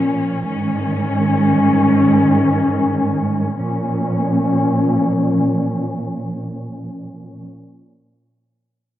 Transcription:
Already playing: A#2 F3 C#4
0.45 G#2 D#3 C#4
3.56 A#2 F3 C#4

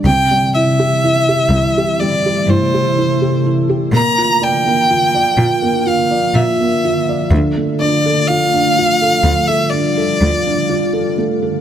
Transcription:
0.05 C2 C3 E3 G3 E4 G5
0.31 G3
0.54 E4 E5
0.79 G4
1.04 E4
1.29 G4
1.49 C2 E4
1.78 G4
1.99 G3 A3 D5
2.26 G4
2.47 G2 E4 C5
2.74 G4
2.98 E4
3.22 G4
3.46 E4
3.69 G4
3.92 A#2 D3 F3 A#3 F4 A#5
4.18 F4
4.42 D5 G5
4.66 A#3
4.90 F4
5.14 D5
5.37 A#2 F4
5.62 A#3
5.87 F4 F5
6.11 D5
6.34 A#2 F4 E5
6.60 A#3
6.85 F4
7.09 D5
7.31 D2 D3 F3 A3
7.57 A3
7.80 D4 D5
8.06 A4
8.28 F4 F5
8.54 D4
8.78 F4
9.02 A4
9.24 D2 G3 A3
9.47 A4 E5
9.70 D4 D5
9.97 A4
10.21 D2 F4
10.47 D4
10.69 F4
10.93 A4
11.18 A3
11.42 A4

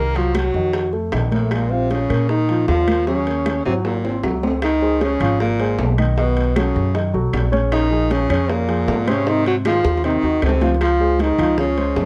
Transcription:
Already playing: C2 D#3 A#3 D#4 A#4
0.15 F3 F#3 F4 F#4, high bongo, high conga, high timbale
0.35 F#3 F#4, high bongo, high conga, high timbale, low timbale, claves
0.54 F2 D#3 D#4, high bongo, high conga
0.73 high bongo, high conga, high timbale
0.93 A3 A4, high bongo, high conga
1.12 A#1 D#3 D#4, high bongo, low bongo, high conga, high timbale, low timbale, claves
1.31 A2 A3 A#3 A#4, high conga, high timbale
1.51 A#2 G#3 A#3 G#4, high bongo, high conga, high timbale, claves
1.71 C3 C4 F4 F5, high conga
1.90 C#3 C#4, high bongo, high conga, high timbale, low timbale
2.10 A#2 A#3 A#4, high timbale, claves
2.29 D#3 D#4, high bongo, high conga
2.49 F3 F4, high conga, high timbale
2.68 D#2 F3 F4, high bongo, low bongo, high conga, low timbale
2.87 A#3 A#4, high conga, high timbale, claves
3.07 C#3 F#3 C#4 F#4, high bongo, high conga
3.26 A#3 A#4, high bongo, high conga, high timbale
3.46 high bongo, high conga, high timbale, low timbale, claves
3.65 G#1 C3 F#3 C4 F#4, high bongo, high conga, high timbale
3.85 A#2 A#3, high bongo, high conga, high timbale
4.04 C4 C5, high bongo, high conga, high timbale
4.23 C#2 F#3 F#4, high bongo, low bongo, high conga, low timbale, claves
4.43 C4 C5, high conga, low timbale
4.62 D#3 D#4, high bongo, high conga, high timbale, claves
4.82 G#3 G#4 C5, high conga
5.01 C#3 C#4, high bongo, high conga, high timbale, low timbale
5.20 G#1 F3 F4 F5, low conga, high timbale, claves
5.40 A#2 A#3, high bongo, high conga
5.60 G#3 G#4 C5, high conga, high timbale
5.79 B1, high bongo, low bongo, high conga, low timbale
5.98 D#3 D#4 D#5, high conga, high timbale, claves
6.17 B2 D#3 B3 D#4 D#5, high bongo, high conga
6.37 high bongo, high conga, high timbale
6.56 C#3 F#3 C#4 F#4 A4, high bongo, high conga, high timbale, low timbale, claves
6.76 F#2, high bongo, high conga
6.94 D#3 D#4 D#5, high bongo, high conga, high timbale
7.14 B1 F#3 F#4 A4, high bongo, high conga
7.33 A#1, high bongo, low bongo, high conga, high timbale, low timbale, claves
7.52 C#3 C#4 C#5, high conga, high timbale
7.72 D#3 D#4, high bongo, high conga, high timbale, claves
7.91 F3 F4 G#4, high conga
8.10 C#3 C#4, high bongo, high conga, high timbale, low timbale
8.30 F2 C#3 C#4 C#5, low conga, high timbale, claves
8.49 A#2 A#3, high bongo, high conga
8.68 F3 F4 G#4, high conga, high timbale
8.88 G#2, high bongo, low bongo, high conga, low timbale
9.07 C3 C#3 C4 C#4 C5, high conga, high timbale, claves
9.26 C3 D#3 C4 D#4 C5, high bongo, high conga
9.46 F#3 F#4, high bongo, high conga, high timbale
9.65 D#3 F3 D#4 F4 G#4, high bongo, high conga, high timbale, low timbale, claves
9.84 D#2, high bongo, high conga
9.97 high bongo
10.03 C3 D#3 C4 D#4 C5, high conga, high timbale
10.10 low bongo
10.23 D#2 D#3 D#4 F#4, high conga
10.42 C#2 C3 C4, high conga, high timbale, low timbale, claves
10.49 low bongo
10.61 F3 F4 F5, low bongo, high conga, high timbale
10.74 low bongo
10.81 F3 F4, high bongo, high conga, high timbale, claves
11.00 G#3 G#4 C5, high conga
11.19 D#3 D#4, high bongo, high conga, high timbale, low timbale
11.38 C#2 F3 F4 F5, low conga, high timbale, claves
11.58 C#3 C#4, high bongo, high conga, low conga
11.77 G#3 G#4 C5, high conga, high timbale
11.96 F2, high bongo, low bongo, high conga, low timbale

